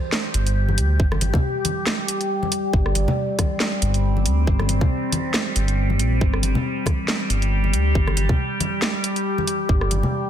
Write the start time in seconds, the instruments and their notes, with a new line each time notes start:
Already playing: synth drone G3 G4
0.12 snare
0.34 detuned saw bass G1, closed hi-hat
0.47 closed hi-hat
0.69 high conga
0.78 detuned saw bass D2, closed hi-hat
1.00 detuned saw bass G1, kick
1.12 cross-stick, high conga
1.21 detuned saw bass G1, closed hi-hat, high conga
1.34 kick, low conga
1.65 closed hi-hat, high conga
1.87 snare
2.08 closed hi-hat
2.21 closed hi-hat
2.43 high conga
2.52 closed hi-hat
2.73 detuned saw bass G1, synth drone C4, kick
2.86 cross-stick
2.95 detuned saw bass G1, closed hi-hat, high conga
3.08 low conga
3.39 kick, cross-stick, closed hi-hat, high conga
3.60 snare
3.82 detuned saw bass G1, closed hi-hat
3.94 closed hi-hat
4.17 high conga
4.26 detuned saw bass D2, closed hi-hat
4.47 detuned saw bass G1, kick
4.59 cross-stick, high conga
4.69 detuned saw bass G1, closed hi-hat, high conga
4.81 kick, low conga
5.12 closed hi-hat, high conga
5.34 snare
5.56 detuned saw bass G1, closed hi-hat
5.68 closed hi-hat
5.90 high conga
6.00 detuned saw bass A#1, closed hi-hat
6.21 detuned saw bass G1, synth drone G4, kick
6.34 cross-stick
6.43 detuned saw bass G1, closed hi-hat, high conga
6.55 low conga
6.86 kick, cross-stick, closed hi-hat, high conga
7.08 snare
7.30 detuned saw bass G1, closed hi-hat
7.42 closed hi-hat
7.64 high conga
7.73 detuned saw bass D2, closed hi-hat
7.95 detuned saw bass G1, kick
8.07 cross-stick, high conga
8.17 detuned saw bass G1, closed hi-hat, high conga
8.29 kick, low conga
8.60 closed hi-hat, high conga
8.82 snare
9.04 closed hi-hat
9.16 closed hi-hat
9.38 high conga
9.47 closed hi-hat
9.69 detuned saw bass G1, synth drone A#3, kick
9.81 cross-stick
9.91 detuned saw bass G1, closed hi-hat, high conga
10.03 low conga